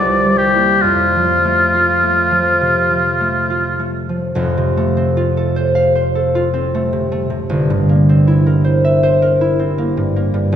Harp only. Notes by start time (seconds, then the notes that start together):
Already playing: C2
0.25 G3
0.55 A#3 E4
0.84 F2
1.16 F3
1.45 A3
1.74 F4
2.03 A3
2.31 F3
2.61 C3
2.91 F3
3.20 A3
3.50 F4
3.79 A3
4.09 F3
4.35 F1 F2
4.57 C3
4.77 A3
4.97 C4
5.17 F4
5.37 A4
5.56 C5
5.75 F5
5.95 C5
6.15 A4
6.35 F4
6.54 C4
6.75 A3
6.93 C3
7.12 A3
7.30 C3
7.50 G1
7.70 G2
7.89 A#3
8.09 C4
8.28 E4
8.47 A#4
8.64 C5
8.84 E5
9.03 C5
9.22 A#4
9.41 E4
9.59 C4
9.78 A#3
9.97 G2
10.16 A#3
10.34 G2
10.52 A1